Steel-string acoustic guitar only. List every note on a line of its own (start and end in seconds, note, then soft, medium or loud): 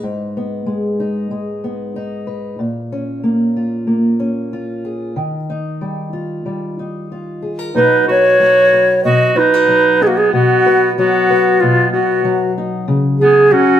0.00 2.59 G#2 medium
0.00 0.66 G#3 medium
0.00 0.35 B3 soft
0.00 0.99 D#4 medium
0.37 1.63 B3 soft
0.66 1.31 G#3 medium
1.00 1.95 D#4 medium
1.31 2.56 G#3 medium
1.64 2.60 B3 soft
1.96 2.60 D#4 medium
2.27 2.55 B4 soft
2.59 5.13 A#2 medium
2.92 4.18 C#4 soft
3.24 3.87 A#3 medium
3.56 4.52 F4 soft
3.87 5.13 A#3 medium
4.20 5.13 C#4 soft
4.53 5.14 F4 medium
4.85 5.17 G#4 soft
5.16 7.70 D#3 medium
5.50 6.78 D#4 medium
5.81 6.44 G3 soft
6.13 7.10 F4 soft
6.46 7.71 G3 soft
6.79 7.71 D#4 soft
7.12 7.72 F4 soft
7.42 7.59 G#4 soft
7.59 7.75 A#4 soft
7.74 9.04 B2 medium
7.74 8.39 F#3 medium
7.74 9.34 D#4 medium
7.74 8.41 F#4 medium
7.74 8.09 B4 medium
8.09 8.72 B4 medium
8.40 9.68 F#3 medium
8.40 9.35 F#4 medium
8.73 10.28 B4 medium
9.05 10.28 B2 medium
9.35 9.54 D#4 medium
9.54 10.32 F#4 soft
9.68 10.98 F#3 medium
10.01 10.29 D#4 medium
10.33 11.60 B2 medium
10.66 11.29 B4 medium
10.98 12.24 F#3 medium
10.98 11.93 F#4 medium
11.30 12.85 B4 medium
11.62 12.85 B2 medium
11.93 13.24 F#4 medium
12.25 13.50 F#3 medium
12.58 12.84 D#4 medium
12.88 13.51 C#3 medium
13.21 13.80 G#4 medium
13.51 13.80 F#3 medium
13.51 13.80 F#4 medium